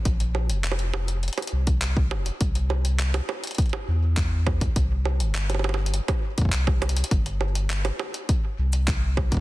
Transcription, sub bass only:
X:1
M:4/4
L:1/16
Q:1/4=102
K:Cm
V:1 name="Sub bass" clef=bass
B,,,3 F,,,4- F,,, z2 C,,4 F,,, z | C,,4- C,, z4 z =E,,4- E,, z | C,,3 G,,,4- G,,, z4 C,,3 z | G,,,4- G,,, z4 z C,,4- C,, z |]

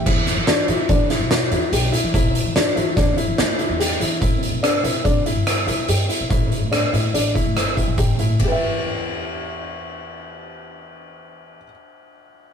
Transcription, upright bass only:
X:1
M:5/4
L:1/16
Q:1/4=144
K:Em
V:1 name="Upright bass" clef=bass
E,,3 E,3 E, z E,2 z B,,,3 E,, z B,,,2 z E, | B,,,2 z E,3 E,2 E,,2 z E, D,,2 z E,,3 E,2 | C,,3 C,3 C, z C,2 z G,,3 C,, z G,,2 z C, | A,,,2 z A,,3 A,,2 A,,,2 z A,, G,,,2 z A,,,3 A,,2 |
E,,16- E,,4- | E,,16- E,,4 |]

